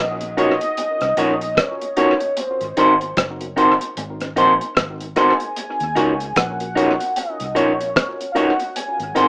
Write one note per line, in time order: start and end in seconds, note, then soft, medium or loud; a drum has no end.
0.00 0.58 A#1 medium
0.00 0.39 D#5 loud
0.21 0.28 F#4 soft
0.21 0.28 A#4 soft
0.21 closed hi-hat medium
0.37 0.53 C#4 medium
0.37 0.53 D#4 medium
0.37 0.53 F4 medium
0.37 0.53 F#4 medium
0.37 0.53 A#4 medium
0.37 0.54 C#5 medium
0.37 1.62 D#5 loud
0.37 closed hi-hat medium
0.61 closed hi-hat medium
0.77 closed hi-hat medium
1.01 1.17 C2 medium
1.01 cross-stick medium
1.01 closed hi-hat soft
1.17 1.55 A#1 medium
1.17 1.33 C#4 medium
1.17 1.33 D#4 medium
1.17 1.33 F4 medium
1.17 1.33 F#4 medium
1.17 1.33 A#4 medium
1.17 1.34 C#5 medium
1.17 closed hi-hat medium
1.41 closed hi-hat medium
1.57 1.99 C#5 medium
1.57 kick loud
1.57 cross-stick loud
1.57 closed hi-hat medium
1.81 closed hi-hat medium
1.97 2.13 C#4 medium
1.97 2.13 D#4 medium
1.97 2.13 F4 medium
1.97 2.13 F#4 medium
1.97 2.13 A#4 medium
1.97 2.13 C#5 medium
1.97 2.41 C#5 medium
1.97 closed hi-hat medium
2.20 closed hi-hat soft
2.37 3.18 C5 medium
2.37 closed hi-hat medium
2.61 2.76 G#1 medium
2.61 closed hi-hat soft
2.77 3.15 G#1 medium
2.77 2.93 C4 medium
2.77 2.93 D#4 medium
2.77 2.93 F#4 medium
2.77 2.93 A#4 loud
2.77 2.93 C5 medium
2.77 closed hi-hat medium
3.01 closed hi-hat soft
3.17 3.78 F#1 medium
3.17 kick loud
3.17 cross-stick loud
3.17 closed hi-hat medium
3.41 3.48 F#4 soft
3.41 3.47 A#4 soft
3.41 closed hi-hat medium
3.56 3.72 C4 medium
3.56 3.72 D#4 medium
3.56 3.73 D#4 medium
3.56 3.73 F#4 medium
3.56 3.73 A#4 medium
3.56 3.73 C5 medium
3.56 closed hi-hat medium
3.81 closed hi-hat medium
3.97 4.35 G#1 loud
3.97 closed hi-hat medium
4.20 cross-stick medium
4.20 closed hi-hat soft
4.36 4.60 A#1 medium
4.36 4.52 C4 medium
4.36 4.52 D#4 medium
4.36 4.52 F#4 medium
4.36 4.53 F#4 medium
4.36 4.52 A#4 medium
4.36 4.53 C5 medium
4.36 closed hi-hat medium
4.61 closed hi-hat medium
4.77 5.15 G#1 medium
4.77 kick loud
4.77 cross-stick loud
4.77 closed hi-hat medium
5.01 closed hi-hat medium
5.16 5.32 C4 medium
5.16 5.32 D#4 medium
5.16 5.32 F#4 medium
5.16 5.33 F#4 medium
5.16 5.32 A#4 medium
5.16 5.33 C5 medium
5.16 6.38 G#5 loud
5.16 cross-stick medium
5.16 closed hi-hat medium
5.40 closed hi-hat medium
5.56 closed hi-hat medium
5.80 5.96 D#2 medium
5.80 closed hi-hat soft
5.95 6.35 C#2 loud
5.95 6.12 C#4 medium
5.95 6.12 D#4 medium
5.95 6.12 F4 medium
5.95 6.12 F#4 medium
5.95 6.12 A#4 loud
5.95 6.13 C#5 medium
5.95 closed hi-hat medium
6.20 closed hi-hat soft
6.36 6.97 A#1 medium
6.36 7.19 F#5 loud
6.36 kick loud
6.36 cross-stick loud
6.36 closed hi-hat medium
6.60 6.67 F#4 soft
6.60 6.67 A#4 soft
6.60 closed hi-hat medium
6.76 6.92 C#4 medium
6.76 6.92 D#4 medium
6.76 6.92 F4 medium
6.76 6.92 F#4 medium
6.76 6.92 A#4 medium
6.76 6.92 C#5 medium
6.76 closed hi-hat medium
7.00 closed hi-hat medium
7.16 7.58 D#5 medium
7.16 closed hi-hat medium
7.40 7.56 C2 medium
7.40 closed hi-hat soft
7.55 7.94 A#1 medium
7.55 7.71 C#4 medium
7.55 7.71 D#4 medium
7.55 7.71 F4 medium
7.55 7.71 F#4 medium
7.55 7.72 F#4 medium
7.55 7.71 A#4 loud
7.55 7.72 C#5 medium
7.55 8.31 C#5 medium
7.55 closed hi-hat medium
7.81 closed hi-hat medium
7.96 kick loud
7.96 cross-stick loud
7.96 closed hi-hat medium
8.21 closed hi-hat medium
8.32 8.51 C#4 medium
8.32 8.51 D#4 medium
8.32 8.51 F4 medium
8.32 8.51 F#4 medium
8.32 8.52 A#4 medium
8.32 8.39 F5 medium
8.32 closed hi-hat medium
8.36 8.52 F#4 medium
8.36 8.52 C#5 medium
8.36 8.76 F#5 loud
8.60 closed hi-hat soft
8.76 9.28 G#5 loud
8.76 closed hi-hat loud
9.00 9.15 G#1 medium
9.00 closed hi-hat soft
9.15 9.28 G#1 medium
9.15 9.28 C4 medium
9.15 9.28 D#4 medium
9.15 9.28 F#4 medium
9.15 9.28 A#4 loud
9.15 9.28 C5 medium
9.15 closed hi-hat medium